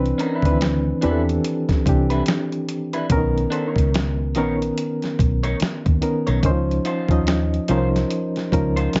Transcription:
0.00 0.11 C2 loud
0.00 0.39 E3 loud
0.00 0.39 C4 medium
0.00 0.39 D4 medium
0.00 0.39 B4 loud
0.06 closed hi-hat soft
0.18 0.34 C#4 medium
0.18 0.36 D#4 medium
0.18 0.36 A#4 medium
0.18 closed hi-hat medium
0.34 0.57 D4 medium
0.34 0.58 E4 medium
0.34 0.58 B4 medium
0.42 0.91 D2 medium
0.42 0.49 D#3 medium
0.42 0.99 C4 medium
0.42 0.99 D4 medium
0.42 1.00 B4 medium
0.42 kick medium
0.42 closed hi-hat soft
0.51 1.02 E3 medium
0.61 snare loud
0.61 closed hi-hat medium
1.01 1.37 E2 medium
1.01 1.81 E3 medium
1.01 1.82 C4 medium
1.01 1.20 D4 medium
1.01 1.82 D4 medium
1.01 1.21 E4 medium
1.01 1.11 G4 medium
1.01 1.21 B4 medium
1.01 closed hi-hat medium
1.11 1.86 A4 medium
1.29 closed hi-hat soft
1.44 closed hi-hat medium
1.69 kick medium
1.69 snare soft
1.69 closed hi-hat soft
1.86 2.20 C2 medium
1.86 3.05 E3 medium
1.86 3.05 C4 medium
1.86 3.05 D4 medium
1.86 3.06 G4 medium
1.86 kick loud
1.86 closed hi-hat medium
2.10 2.23 D4 soft
2.10 2.23 E4 medium
2.10 2.22 B4 medium
2.10 closed hi-hat soft
2.26 snare loud
2.26 closed hi-hat medium
2.52 closed hi-hat soft
2.69 closed hi-hat medium
2.93 3.07 D4 soft
2.93 3.06 E4 medium
2.93 3.06 B4 medium
2.93 closed hi-hat soft
3.10 3.44 B1 loud
3.10 3.18 C#3 medium
3.10 4.29 B3 loud
3.10 4.29 C#4 loud
3.10 4.30 A#4 loud
3.10 kick loud
3.10 closed hi-hat medium
3.17 4.32 D#3 loud
3.38 closed hi-hat soft
3.50 3.66 D4 medium
3.50 3.68 A4 medium
3.50 3.68 C5 medium
3.50 closed hi-hat medium
3.66 3.90 D#4 medium
3.66 3.90 A#4 medium
3.66 3.91 C#5 medium
3.76 4.37 C#2 medium
3.76 kick medium
3.76 closed hi-hat soft
3.94 snare loud
3.94 closed hi-hat medium
4.35 4.70 A#1 medium
4.35 5.94 D#3 medium
4.35 5.94 B3 medium
4.35 5.94 C#4 medium
4.35 4.54 D#4 medium
4.35 4.54 A#4 medium
4.35 5.95 A#4 medium
4.35 4.55 C#5 medium
4.35 closed hi-hat medium
4.62 closed hi-hat soft
4.78 closed hi-hat medium
5.02 snare soft
5.02 closed hi-hat soft
5.19 5.53 B1 medium
5.19 kick medium
5.19 closed hi-hat medium
5.43 5.56 D#4 medium
5.43 5.56 A#4 medium
5.43 5.56 C#5 medium
5.43 closed hi-hat medium
5.60 muted fingered electric bass stroke soft
5.60 snare loud
5.60 closed hi-hat medium
5.86 5.99 D#2 medium
5.86 kick medium
5.86 closed hi-hat soft
6.01 6.41 D#3 medium
6.01 6.41 B3 medium
6.01 6.42 C#4 medium
6.01 6.42 A#4 medium
6.01 closed hi-hat medium
6.27 6.41 B1 medium
6.27 6.40 D#4 soft
6.27 6.39 A#4 medium
6.27 6.39 C#5 medium
6.27 closed hi-hat soft
6.43 6.78 C#2 medium
6.43 6.51 D#3 medium
6.43 7.06 C#4 medium
6.43 7.06 D#4 medium
6.43 7.07 C5 loud
6.43 kick loud
6.43 closed hi-hat medium
6.51 7.09 F3 loud
6.71 closed hi-hat soft
6.85 7.24 D#4 medium
6.85 7.24 F4 medium
6.85 7.25 C5 loud
6.85 closed hi-hat medium
7.09 7.57 D#2 medium
7.09 7.65 F3 medium
7.09 7.65 C#4 medium
7.09 7.66 D#4 medium
7.09 7.66 D#5 medium
7.09 kick medium
7.09 closed hi-hat soft
7.27 snare loud
7.27 closed hi-hat medium
7.54 closed hi-hat soft
7.68 8.03 C2 medium
7.68 8.48 F3 medium
7.68 8.48 C#4 medium
7.68 7.87 D#4 medium
7.68 8.48 D#4 medium
7.68 7.88 F4 medium
7.68 7.77 A#4 medium
7.68 7.88 C5 medium
7.68 closed hi-hat medium
7.78 8.52 C5 medium
7.96 snare soft
7.96 closed hi-hat soft
8.11 closed hi-hat medium
8.36 snare soft
8.36 closed hi-hat soft
8.52 8.86 C#2 medium
8.52 9.00 F3 medium
8.52 9.00 C#4 medium
8.52 9.00 D#4 medium
8.52 9.00 A#4 medium
8.52 kick medium
8.52 closed hi-hat medium
8.76 8.90 D#4 soft
8.76 8.89 F4 medium
8.76 8.89 C5 medium
8.76 closed hi-hat soft
8.93 muted fingered electric bass stroke soft
8.93 snare loud
8.93 closed hi-hat medium

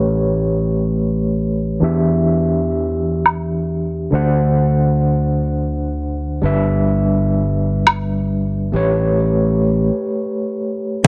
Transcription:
0.00 1.79 A1 medium
0.00 1.78 A3 medium
0.00 1.78 G4 medium
0.00 1.79 B4 medium
0.00 1.79 C#5 medium
1.80 4.10 E2 medium
1.80 4.08 E3 medium
1.80 4.09 D4 medium
1.80 4.10 G4 medium
1.84 4.10 E5 medium
3.26 low woodblock medium
4.11 6.41 D2 medium
4.11 6.39 D3 medium
4.11 6.40 D4 medium
4.11 6.41 C5 medium
4.15 6.41 F#5 medium
6.42 8.71 G1 medium
6.42 8.70 G3 medium
6.42 8.71 D4 medium
6.42 8.71 B4 medium
6.42 8.72 E5 medium
7.87 low woodblock medium
8.72 9.89 A1 medium
8.72 11.01 A3 medium
8.72 11.01 G4 medium
8.72 11.02 B4 medium
8.72 11.03 C#5 medium

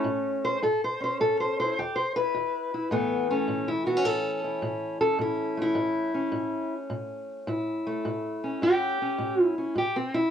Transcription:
0.00 0.60 A3 soft
0.00 0.56 C#4 loud
0.04 0.58 A2 medium
0.45 0.63 C5 medium
0.63 1.16 A2 medium
0.63 0.82 A4 medium
0.84 1.02 C5 medium
1.00 1.74 C#4 soft
1.00 1.20 C5 medium
1.20 1.73 A2 medium
1.20 1.39 A4 medium
1.40 1.58 C5 medium
1.60 1.76 E4 soft
1.60 1.78 C5 medium
1.79 2.31 E2 medium
1.79 1.97 G4 medium
1.96 2.15 C5 medium
2.16 2.73 E4 soft
2.16 2.92 B4 loud
2.35 2.88 E2 medium
2.74 2.90 E4 soft
2.91 3.44 A2 medium
2.91 6.42 E3 medium
2.91 3.30 A3 medium
2.91 3.29 B3 medium
3.30 5.57 A3 soft
3.30 3.68 C#4 medium
3.48 4.01 A2 medium
3.68 3.86 E4 medium
3.86 3.97 B3 soft
3.86 4.05 F#4 medium
3.97 5.00 C#4 soft
4.04 4.58 A2 medium
4.04 4.43 A4 medium
4.44 5.00 E4 soft
4.62 5.15 A2 medium
5.01 6.14 C#4 soft
5.01 5.19 A4 medium
5.19 5.72 A2 medium
5.19 5.58 E4 medium
5.57 7.86 A3 soft
5.62 6.73 E4 medium
5.75 6.29 A2 medium
6.14 8.43 C#4 soft
6.32 6.86 A2 medium
6.90 7.43 A2 medium
7.47 8.00 A2 medium
7.47 8.63 E4 soft
7.87 9.81 A3 medium
8.05 8.58 A2 medium
8.44 9.00 C#4 soft
8.62 9.15 A2 medium
8.62 9.44 G4 loud
9.02 9.57 C#4 soft
9.18 9.71 A2 medium
9.44 9.76 E4 loud
9.58 9.74 C#4 soft
9.75 10.28 A2 medium
9.75 9.96 G4 medium
9.96 10.14 C4 medium
10.14 10.30 E4 medium

